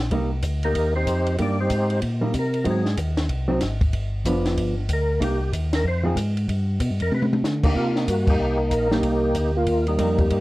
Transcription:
Already playing: A#1
0.11 C2 G3 A#3 D#4, kick, ride
0.42 D2, kick, hi-hat pedal, ride
0.63 A#3 D#4 G4 A#4, ride
0.75 D#2, kick, ride
0.95 C4 D#4 G4 C5
1.07 F2, kick, hi-hat pedal, ride
1.26 ride
1.38 G2 G3 A#3 D#4 D5, kick, ride
1.43 D4
1.60 C4 D#4 G4 C5
1.70 G#2, kick, hi-hat pedal, ride
1.90 ride
2.02 A#2, kick, ride
2.21 G3 A#3 D#4
2.34 C3, kick, hi-hat pedal, ride
2.39 A#4
2.54 ride
2.64 G#2 F#3 C4 D#4, kick, ride
2.71 G#4
2.86 snare
2.97 D#2, kick, hi-hat pedal, ride
3.17 snare, ride
3.29 C2, kick, ride
3.48 F#3 C4 D#4
3.60 G#1, kick, snare, hi-hat pedal, ride
3.81 kick, ride
3.93 G1, kick, ride
4.25 F1 F3 B3 D4, kick, hi-hat pedal, ride
4.46 snare, ride
4.57 G1, kick, ride
4.89 D2, kick, hi-hat pedal, ride
4.94 A#4
5.21 C2 A#3 D#4 G4, kick, ride
5.53 D#2, kick, hi-hat pedal, ride
5.73 A#4, snare, ride
5.84 F2 C5, kick
6.04 F3 C4 D#4 G#4
6.16 G#2, kick, hi-hat pedal, ride
6.37 ride
6.48 G2, kick, ride
6.80 B2, kick, hi-hat pedal, ride
6.90 G2
7.00 F2 A#4, ride
7.11 C3 B4, high tom
7.22 high tom
7.33 high tom
7.43 D3, snare, hi-hat pedal
7.63 A#3 D#4 G4, kick, crash
7.75 C3 A#3 F4, kick
7.96 D#4, snare
8.07 G2 F#4, kick, hi-hat pedal, ride
8.27 A#3 D#4 G4, kick, crash
8.39 C2
8.71 A#1 A#4, kick, hi-hat pedal, ride
8.91 G3 A#3 D#4 G4, snare
9.03 C2, kick, ride
9.35 D2, kick, hi-hat pedal, ride
9.56 A#3 F4
9.67 D#2, kick, ride
9.87 G3 A#3 D#4, ride
9.99 F2 G3 A#3 D#4, kick, hi-hat pedal, ride
10.18 A#3 D#4 G4, kick, ride
10.30 G2, kick, ride

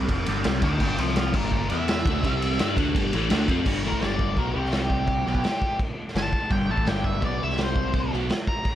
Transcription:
Already playing: C4
0.09 F1 F2 C3 F3, kick, ride
0.26 G1 G2 D3 G3, ride
0.44 C2 C3 G3 C4, snare, ride
0.62 D2 D3 A3 A#4 G5, kick, ride
0.66 D4
0.80 G1 G2 D3 G3 B4 G5, kick, crash
0.98 C2 C3 G3 C4 C5 F5, ride
1.08 snare
1.16 C5 F5, snare, ride
1.34 G1 G2 D3 G3 F4 D5, kick, crash
1.52 G1 G2 D3 F4 D5, kick
1.69 E2 E3 B3 E5, ride
1.73 E4
1.88 snare, ride
1.98 snare
2.05 D2 D3 A3, kick, ride
2.10 D4
2.23 C2 C3 G3 C4, kick, ride
2.42 ride
2.52 snare
2.59 G2 G3 D4 G4, snare, ride
2.77 D2 D3 A3 D4, kick, ride
2.95 G1 G2 D3 G3, kick, ride
3.13 A1 A2 E3 A3, ride
3.30 D2 D3 A3 D4, snare, ride
3.48 F2 F3 C4 F4, kick, ride
3.66 G1 G2 D3 G3, kick, crash
3.84 A1 A2 E3 A3 A#4, snare
3.92 kick
4.02 G1 G2 D3 G3 D5, snare, crash
4.19 kick
4.37 B1 B2 F#3 B3 A#4, kick, crash
4.55 C2 C3 G3 C4 G4
4.66 snare
4.72 G4, snare, crash
4.90 kick
5.07 kick, crash
5.26 B1 B2 F#3 B3, snare
5.35 kick
5.44 snare, crash
5.62 kick
5.79 kick, crash
6.08 snare
6.15 G1 G2 D3 A5, snare, crash
6.33 kick
6.50 G1 G2 D3 G3 G5, kick, crash
6.69 A1 A2 E3 A3 A5
6.77 kick
6.86 G1 G2 D3 G3 G5, snare, crash
7.04 E5, kick
7.22 B1 B2 F#3 B3 D5, kick, crash
7.42 C2 C3 G3 C4 E5
7.50 snare
7.58 snare, crash
7.63 C5
7.76 kick
7.94 kick, crash
8.13 B1 B2 F#3 B3, snare
8.30 snare, crash
8.47 A#5, kick
8.65 kick, crash

